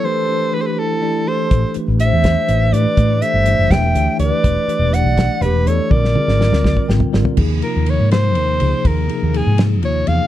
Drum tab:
CC |------------|------------|------------|------------|
RD |------------|------------|------------|------------|
HH |------------|x-x-x-x-x-x-|x-x-x-x-x-x-|x-x-x-x-x-x-|
SD |------------|------o-----|------o-----|------o-----|
T1 |------------|------------|------------|------------|
FT |------------|------------|------------|------------|
BD |------------|o-----o-----|o-----o-----|o-----o-----|

CC |------------|x-----------|------------|
RD |------------|--x-x-x-x-x-|x-x-x-x-x-x-|
HH |------------|------------|------------|
SD |-o-oooo-o-o-|------o-----|------o-----|
T1 |o-o---------|------------|------------|
FT |---------o-o|------------|------------|
BD |o-----oo----|o-----------|o-----------|